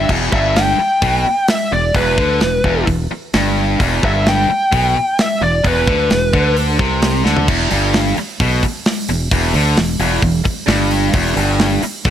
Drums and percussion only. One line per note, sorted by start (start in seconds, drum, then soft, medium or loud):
0.09 kick loud
0.09 crash loud
0.32 kick loud
0.56 snare medium
0.56 open hi-hat medium
1.02 kick loud
1.02 open hi-hat medium
1.48 snare loud
1.48 open hi-hat medium
1.94 kick loud
1.94 open hi-hat medium
2.18 kick loud
2.41 snare loud
2.41 open hi-hat medium
2.64 kick loud
2.87 kick medium
2.87 open hi-hat medium
3.33 snare loud
3.33 open hi-hat soft
3.80 kick loud
3.80 open hi-hat medium
4.03 kick loud
4.26 snare loud
4.26 open hi-hat medium
4.72 kick loud
4.72 open hi-hat medium
5.19 snare loud
5.19 open hi-hat medium
5.64 kick loud
5.64 open hi-hat medium
5.87 kick loud
6.10 snare loud
6.10 open hi-hat medium
6.33 kick loud
6.57 open hi-hat medium
6.79 kick loud
7.02 snare loud
7.02 open hi-hat medium
7.26 snare medium
7.37 floor tom medium
7.48 kick loud
7.48 crash loud
7.71 open hi-hat medium
7.94 snare loud
7.94 open hi-hat medium
8.17 open hi-hat medium
8.40 kick loud
8.40 open hi-hat medium
8.63 kick medium
8.63 open hi-hat medium
8.86 snare loud
8.86 open hi-hat medium
9.09 open hi-hat medium
9.31 kick loud
9.31 open hi-hat medium
9.54 open hi-hat medium
9.77 snare loud
9.77 open hi-hat medium
9.99 open hi-hat medium
10.22 kick loud
10.22 open hi-hat medium
10.45 kick medium
10.45 open hi-hat medium
10.68 snare loud
10.68 open hi-hat medium
10.91 open hi-hat medium
11.13 kick loud
11.13 open hi-hat medium
11.37 open hi-hat medium
11.59 snare loud
11.59 open hi-hat medium
11.82 open hi-hat medium
12.05 kick loud
12.05 open hi-hat medium